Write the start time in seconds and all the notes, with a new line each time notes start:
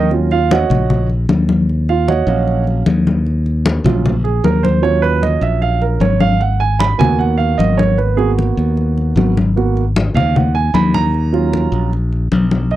Already playing: D#2
0.11 F#3 C#4 F4, high conga
0.31 F4 F5, high conga
0.51 F#4 C#5 D#5 F#5, high conga
0.70 A#1, high conga, low conga
0.90 high conga, low conga
1.10 high conga
1.29 D#2, high conga
1.49 high conga
1.69 high conga
1.89 F4 F5, high conga
2.08 F#4 C#5 D#5 F#5, high conga
2.27 A#1 F#3 C#4 F5, high conga
2.48 high conga
2.67 high conga
2.86 D#2, high conga
3.07 high conga
3.27 high conga
3.46 high conga
3.66 high conga
3.84 A#1 F#3 C#4 F4, high conga, low conga
4.06 high conga, low conga
4.24 G#4, high conga
4.44 D#2 A#4, high conga
4.63 C5, high conga
4.82 F#3 C#4 F4 C#5, high conga
5.02 B4, high conga
5.23 D#5, high conga
5.41 A#1 E5, high conga
5.62 F5, high conga
5.82 A#4, high conga
6.00 G#1 C#5, high conga
6.20 F5, high conga
6.40 F#5, high conga
6.60 G#5, high conga
6.79 B5, high conga
6.98 D#2 A#3 B3 F#4 G#5, high conga, low conga
7.19 F#5, high conga
7.38 F5, high conga
7.58 G#1 D#5, high conga
7.78 C#5, high conga
7.98 B4, high conga
8.16 A#3 B3 F#4 G#4, high conga
8.39 high conga
8.57 D#2, high conga
8.77 high conga
8.98 high conga
9.16 G#1 A#3 B3 F#4, high conga
9.37 high conga
9.56 A#3 B3 F#4, high conga
9.77 high conga
9.96 high conga
10.14 D#2 F5, high conga, low conga
10.35 F#5, high conga, low conga
10.55 G#5, high conga
10.74 D#2 B5, high conga
10.94 A#5, high conga
11.14 high conga
11.33 F#3 C#4 F4, high conga
11.53 high conga
11.72 A#1, high conga
11.93 high conga
12.12 high conga
12.32 B1, high conga
12.51 high conga
12.71 D#5, high conga